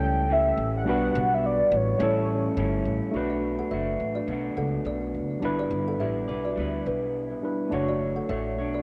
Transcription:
0.00 0.54 C#2 loud
0.00 0.28 E3 medium
0.00 0.30 G3 medium
0.00 0.81 G3 medium
0.00 0.82 A3 medium
0.00 0.30 C#4 medium
0.00 0.83 C#4 medium
0.00 0.31 E4 medium
0.00 0.83 E4 medium
0.00 0.87 A4 medium
0.00 0.34 G5 loud
0.29 0.86 E3 medium
0.29 0.87 G3 medium
0.29 0.87 C#4 medium
0.29 0.88 E4 medium
0.29 0.75 E5 loud
0.57 0.87 A1 medium
0.77 1.35 F#5 loud
0.84 1.10 B1 medium
0.84 1.99 B2 medium
0.84 1.97 G3 medium
0.84 1.99 G3 medium
0.84 1.98 B3 medium
0.84 1.98 D4 medium
0.84 1.99 F#4 medium
0.89 2.01 B3 medium
0.89 2.02 D4 medium
0.89 2.02 F#4 loud
0.89 2.00 B4 medium
1.15 1.61 B1 loud
1.34 1.47 E5 medium
1.46 1.77 D5 medium
1.71 1.94 A1 loud
1.76 2.88 C#5 medium
1.98 2.46 A1 loud
1.98 2.56 E3 medium
1.98 3.11 G3 medium
1.98 2.56 G3 medium
1.98 3.10 A3 medium
1.98 3.12 C#4 medium
1.98 2.58 C#4 medium
1.98 3.13 E4 medium
2.02 2.58 E4 medium
2.02 3.13 A4 medium
2.57 2.80 G1 loud
2.57 3.14 E3 medium
2.57 3.14 G3 medium
2.57 3.15 C#4 medium
2.57 3.16 E4 medium
2.85 2.98 A1 medium
3.11 3.60 B1 medium
3.11 3.71 B2 medium
3.11 3.69 F#3 medium
3.11 5.37 A3 medium
3.11 3.71 A3 medium
3.11 5.38 D4 medium
3.11 5.39 F#4 medium
3.16 3.72 D4 medium
3.16 3.72 F#4 medium
3.16 5.40 B4 medium
3.30 3.43 F#4 soft
3.30 3.42 D5 medium
3.59 3.71 A4 soft
3.59 3.71 F#5 medium
3.71 3.94 F#1 medium
3.71 4.27 F#3 medium
3.71 4.28 A3 medium
3.71 4.30 D4 medium
3.71 4.30 F#4 medium
3.71 3.87 A4 medium
3.71 3.86 E5 medium
4.00 4.23 A1 medium
4.15 4.43 F#4 soft
4.15 4.43 D5 medium
4.27 4.51 B1 medium
4.27 5.42 B2 medium
4.27 5.43 F#3 medium
4.27 5.43 A3 medium
4.27 5.44 D4 medium
4.32 5.44 F#4 medium
4.57 4.80 C#2 medium
4.57 4.72 A4 medium
4.57 4.72 F#5 medium
4.85 5.16 B1 medium
4.85 5.28 F#4 soft
4.85 5.28 D5 medium
5.15 5.37 F#1 medium
5.40 5.66 G1 medium
5.40 7.38 G3 medium
5.40 6.00 G3 medium
5.40 5.98 B3 medium
5.40 7.39 D4 medium
5.40 7.40 E4 medium
5.40 6.00 E4 medium
5.44 6.00 B4 medium
5.44 7.40 B4 medium
5.44 6.02 D5 medium
5.59 5.72 F#4 medium
5.59 5.71 D5 medium
5.71 6.00 G1 medium
5.88 6.00 A4 medium
5.88 6.00 F#5 medium
6.00 6.23 A1 medium
6.00 6.28 B3 medium
6.00 6.29 E4 medium
6.00 6.16 G4 medium
6.00 6.28 B4 medium
6.00 6.26 D5 medium
6.00 6.15 E5 medium
6.28 6.52 B1 medium
6.28 6.57 E4 soft
6.28 6.58 B4 soft
6.28 6.57 D5 medium
6.45 6.72 F#4 medium
6.45 6.72 D5 medium
6.56 6.80 D2 medium
6.56 7.71 G3 medium
6.56 7.72 B3 medium
6.56 7.72 E4 medium
6.56 7.73 B4 medium
6.60 7.74 D5 medium
6.86 7.32 B1 medium
6.86 7.02 D4 medium
6.86 7.01 B4 medium
7.42 7.71 G3 soft
7.42 7.70 D4 medium
7.42 7.72 E4 soft
7.42 7.73 B4 medium
7.70 8.18 F#1 medium
7.70 8.29 F#3 medium
7.70 8.82 A3 medium
7.70 8.28 A3 medium
7.70 8.82 D4 medium
7.70 8.29 D4 medium
7.70 8.82 F#4 medium
7.70 8.30 F#4 medium
7.74 8.31 C#5 medium
7.74 8.82 C#5 medium
7.88 8.01 F#4 soft
7.88 8.00 D5 medium
8.16 8.29 A4 soft
8.16 8.28 F#5 medium
8.29 8.58 A1 medium
8.29 8.58 A3 soft
8.29 8.58 D4 medium
8.29 8.59 F#4 medium
8.29 8.45 A4 medium
8.29 8.57 C#5 medium
8.29 8.44 E5 medium
8.58 8.81 B1 medium
8.58 8.82 D4 soft
8.58 8.82 F#4 soft
8.58 8.82 C#5 medium
8.74 8.82 F#4 medium
8.74 8.82 D5 medium

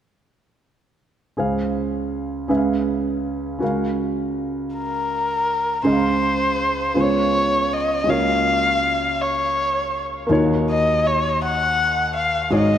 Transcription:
1.37 2.46 C#2 soft
1.37 2.46 C#3 soft
1.37 2.47 C#4 soft
1.37 2.47 G#4 soft
1.37 2.50 C5 soft
1.37 2.51 F5 soft
2.48 3.57 C#2 soft
2.48 3.57 C#3 soft
2.48 3.57 C#4 soft
2.48 3.61 G#4 soft
2.48 3.62 B4 soft
2.48 2.57 E5 soft
2.57 3.63 F5 soft
3.59 5.81 C#2 soft
3.59 5.81 C#3 soft
3.59 5.79 C#4 soft
3.59 5.80 F#4 soft
3.59 5.81 A#4 soft
3.64 5.82 F5 soft
4.76 5.82 A#4 medium
5.83 6.92 C#2 soft
5.83 6.92 C#3 soft
5.83 6.96 C#4 soft
5.83 6.95 G#4 soft
5.83 6.96 C5 soft
5.83 7.02 C5 medium
5.83 5.92 D#5 soft
5.92 7.00 F5 soft
6.94 8.03 C#2 soft
6.94 8.03 C#3 soft
6.94 8.07 B3 soft
6.94 8.04 F4 soft
6.94 8.08 G#4 soft
6.94 7.03 C5 soft
7.01 7.75 C#5 medium
7.01 8.08 C#5 medium
7.73 8.11 D#5 medium
8.04 10.26 C#2 soft
8.04 10.26 C#3 soft
8.04 8.12 G#3 soft
8.04 10.25 F4 soft
8.08 10.25 A#3 soft
8.08 10.26 F#4 soft
8.08 10.27 C#5 medium
8.08 9.23 F5 medium
9.22 10.04 C#5 medium
10.27 12.48 D#2 medium
10.27 12.48 D#3 medium
10.27 12.46 A#3 medium
10.27 12.48 D#4 medium
10.27 10.37 F4 soft
10.32 12.49 C#5 medium
10.37 12.50 F#4 soft
10.70 11.08 D#5 medium
11.07 11.42 C#5 medium
11.45 12.13 F#5 medium
12.17 12.50 F5 medium
12.50 12.78 G#1 soft
12.50 12.78 G#2 soft
12.50 12.78 G#3 soft
12.50 12.78 D#4 soft
12.50 12.78 F#4 soft
12.50 12.78 C#5 soft
12.55 12.78 D#5 medium

